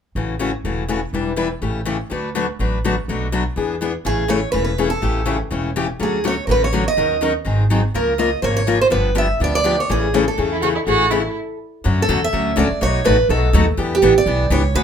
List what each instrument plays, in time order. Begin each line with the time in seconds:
0.15 upright bass A1, steel-string acoustic guitar C#3 E3 A3 C#4 F#4
0.39 steel-string acoustic guitar C#3 E3 A3 C#4 F#4
0.64 upright bass E1, steel-string acoustic guitar C#3 E3 A3 C#4 F#4
0.89 steel-string acoustic guitar C#3 E3 A3 C#4 F#4
1.13 upright bass E1, steel-string acoustic guitar E3 G3 D4 E4 B4
1.36 steel-string acoustic guitar E3 G3 D4 E4 B4
1.62 upright bass A1, steel-string acoustic guitar C#3 E3 A3 C#4 G4
1.85 steel-string acoustic guitar C#3 E3 A3 C#4 G4
2.10 upright bass D2, steel-string acoustic guitar D3 F#3 A3 D4 F#4 B4
2.35 steel-string acoustic guitar D3 F#3 A3 D4 F#4 B4
2.59 upright bass A1, steel-string acoustic guitar D3 F#3 A3 D4 F#4 B4
2.84 steel-string acoustic guitar D3 F#3 A3 D4 F#4 B4
3.08 upright bass B1, steel-string acoustic guitar B2 F#3 A3 D4 F#4
3.32 steel-string acoustic guitar B2 F#3 A3 D4 F#4
3.56 upright bass E2, steel-string acoustic guitar E3 B3 D4 G#4
3.81 steel-string acoustic guitar E3 B3 D4 G#4
4.05 upright bass A1, steel-string acoustic guitar C#3 E3 A3 C#4 G#4
4.28 steel-string acoustic guitar C#3 E3 A3 C#4 G#4 C#5
4.52 upright bass E1, steel-string acoustic guitar C#3 E3 A3 C#4 G#4 B4
4.64 steel-string acoustic guitar B4
4.78 steel-string acoustic guitar C#3 E3 A3 C#4 G#4
4.90 steel-string acoustic guitar A4
5.02 upright bass A1, steel-string acoustic guitar C#3 E3 A3 C#4 G4
5.26 steel-string acoustic guitar C#3 E3 A3 C#4 G4
5.51 upright bass E1, steel-string acoustic guitar C#3 E3 A3 C#4 G4
5.76 steel-string acoustic guitar C#3 E3 A3 C#4 G4
6.00 upright bass D2, steel-string acoustic guitar D3 F#3 A3 C#4 F#4 G#4
6.24 steel-string acoustic guitar D3 F#3 A3 C#4 F#4 C#5
6.47 upright bass A1, steel-string acoustic guitar D3 F#3 A3 C#4 F#4 A#4
6.51 steel-string acoustic guitar B4
6.64 steel-string acoustic guitar C#5
6.73 steel-string acoustic guitar D3 F#3 A3 C#4 F#4
6.88 steel-string acoustic guitar D#5
6.97 upright bass D#2, steel-string acoustic guitar D#3 F#3 C#4 D#4 A#4
7.21 steel-string acoustic guitar D#3 F#3 C#4 D#4 A#4
7.45 upright bass G#1, steel-string acoustic guitar D#3 F#3 C4 D#4 G#4
7.70 steel-string acoustic guitar D#3 F#3 C4 D#4 G#4
7.94 upright bass C#2, steel-string acoustic guitar C#3 F3 A#3 F4 A#4
8.18 steel-string acoustic guitar C#3 F3 A#3 F4 A#4 D#5
8.42 upright bass G#1, steel-string acoustic guitar C#3 F3 A#3 F4 A#4 C5 C#5
8.57 steel-string acoustic guitar C#5
8.67 steel-string acoustic guitar C#3 F3 A#3 F4 A#4
8.81 steel-string acoustic guitar C5
8.90 upright bass G1, steel-string acoustic guitar D3 F3 B3 D4 G4 B4
9.15 steel-string acoustic guitar D3 F3 B3 D4 G4 E5
9.40 upright bass D2, steel-string acoustic guitar D3 F3 B3 D4 G4 D5
9.55 steel-string acoustic guitar D5
9.64 steel-string acoustic guitar D3 F3 B3 D4 G4
9.80 steel-string acoustic guitar C#5
9.89 upright bass A1, steel-string acoustic guitar C#3 E3 A3 C#4 G#4
10.14 steel-string acoustic guitar C#3 E3 A3 C#4 G#4 C#5
10.28 steel-string acoustic guitar A4
10.38 upright bass E2, steel-string acoustic guitar C#3 E3 A3 C#4 G#4
10.52 violin E4
10.62 steel-string acoustic guitar C#3 E3 A3 C#4 G#4, violin F#4
10.75 violin E4
10.86 upright bass A1, steel-string acoustic guitar C#3 E3 A3 C#4 G#4, violin F#4
11.10 steel-string acoustic guitar C#3 E3 A3 C#4 G#4, violin E4
11.84 upright bass F#2, steel-string acoustic guitar D3 F#3 A3 C#4 F#4
12.02 steel-string acoustic guitar A4
12.09 upright bass E2, steel-string acoustic guitar D3 F#3 A3 C#4 F#4
12.24 steel-string acoustic guitar E5
12.33 upright bass D2, steel-string acoustic guitar D3 F#3 A3 C#4 F#4
12.56 upright bass C#2, steel-string acoustic guitar D3 F#3 A3 C#4 F#4 D5
12.71 muted upright bass stroke
12.81 upright bass B1, steel-string acoustic guitar B2 F#3 A3 D#4 F#4 C#5
13.05 upright bass A1, steel-string acoustic guitar B2 F#3 A3 D#4 F#4 B4
13.29 upright bass B1, steel-string acoustic guitar B2 F#3 A3 D#4 F#4 A4
13.53 upright bass D#2, steel-string acoustic guitar B2 F#3 A3 D#4 F#4
13.77 upright bass E2, steel-string acoustic guitar E3 B3 D4 G4
13.95 steel-string acoustic guitar G4
14.02 upright bass A1, steel-string acoustic guitar E3 B3 D4 G4
14.18 steel-string acoustic guitar D5
14.26 upright bass B1, steel-string acoustic guitar E3 B3 D4 G4
14.50 upright bass C#2, steel-string acoustic guitar E3 B3 D4 G4 C#5
14.75 upright bass D2, steel-string acoustic guitar D3 F#3 B3 F#4 G#4 B4